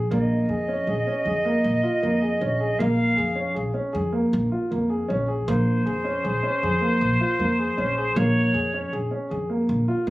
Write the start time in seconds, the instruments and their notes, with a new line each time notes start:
0.11 upright bass A#1, grand piano A#3, flute D#5
0.49 upright bass F2, grand piano G#4
0.68 grand piano C#4
0.87 upright bass A#1, grand piano G#4
1.07 grand piano C#4
1.25 upright bass F2, grand piano G#4
1.45 grand piano A#3
1.64 upright bass A#1
1.83 grand piano F4
2.02 upright bass F2, grand piano A#3
2.22 grand piano G#4
2.41 upright bass A#1, grand piano C#4
2.60 grand piano G#4
2.79 upright bass A#1, grand piano A#3, flute F5
3.16 upright bass F2, grand piano G#4
3.35 grand piano C#4
3.54 upright bass A#1, grand piano G#4
3.74 grand piano C#4
3.93 upright bass F2, grand piano G#4
4.12 grand piano A#3
4.33 upright bass A#1
4.52 grand piano F4
4.71 upright bass F2, grand piano A#3
4.90 grand piano G#4
5.08 upright bass A#1, grand piano C#4
5.28 grand piano G#4
5.47 upright bass A#1, grand piano A#3, flute C5
5.86 upright bass F2, grand piano G#4
6.04 grand piano C#4
6.24 upright bass A#1, grand piano G#4
6.43 grand piano C#4
6.63 upright bass F2, grand piano G#4
6.81 grand piano A#3
7.01 upright bass A#1
7.20 grand piano F4
7.39 upright bass F2, grand piano A#3
7.59 grand piano G#4
7.77 upright bass A#1, grand piano C#4
7.97 grand piano G#4
8.16 upright bass A#1, grand piano A#3, flute C#5
8.54 upright bass F2, grand piano G#4
8.74 grand piano C#4
8.93 upright bass A#1, grand piano G#4
9.11 grand piano C#4
9.30 upright bass F2, grand piano G#4
9.49 grand piano A#3
9.69 upright bass A#1
9.88 grand piano F4
10.07 upright bass F2, grand piano A#3